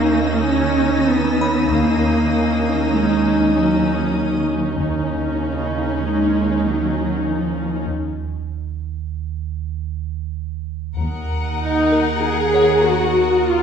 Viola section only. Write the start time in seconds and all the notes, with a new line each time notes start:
Already playing: C#4 D#4
1.71 C#4 D#4
4.80 C#4 D#4
11.60 D#4
12.23 G#4
12.84 F#4
13.46 F4